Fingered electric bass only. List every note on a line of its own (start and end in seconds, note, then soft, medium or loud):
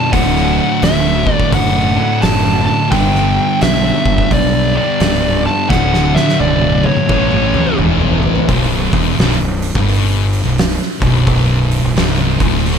0.13 0.59 D1 medium
0.82 1.28 D1 loud
1.52 1.98 F#1 loud
2.23 2.68 F#1 medium
2.92 3.37 G1 loud
3.62 3.91 B1 loud
4.05 4.22 G1 medium
4.31 4.77 B1 loud
5.01 5.46 C#1 loud
5.70 6.16 D1 loud
6.40 6.86 B0 loud
7.09 7.55 A1 loud
7.78 8.24 E1 loud
8.49 8.90 B0 medium
8.93 9.17 E1 loud
9.18 9.39 B0 loud
9.41 9.73 B0 medium
9.75 10.41 G1 medium
10.45 10.77 B0 medium
11.02 11.80 B0 loud
11.84 11.96 B0 medium
11.96 12.37 C1 loud
12.40 12.79 D1 loud